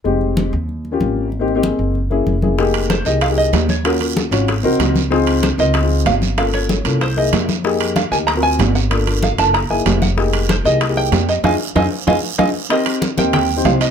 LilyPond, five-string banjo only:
\new Staff \with { instrumentName = "Five-string banjo" } { \time 4/4 \key f \minor \tempo 4 = 190 r1 | r1 | r4 c''8 ees''8 f''8 ees''4 des''8~ | des''8 r2. r8 |
r4 c''8 ees''4. f''4 | f''8 des''4. c''8 dis''4 r8 | r4 f''8 aes''8 ais''8 aes''4 fis''8 | r4 f''8 a''8 bes''8 aes''4 ges''8 |
r4 c''8 ees''4 g''4 ees''8 | <ees'' f'' aes''>8 r8 <ees'' f'' aes''>8 r8 <ees'' f'' aes''>8 r8 <ees'' f'' aes''>8 r8 | ees''4 r8 g''8 g''4 f''8 ees''8 | }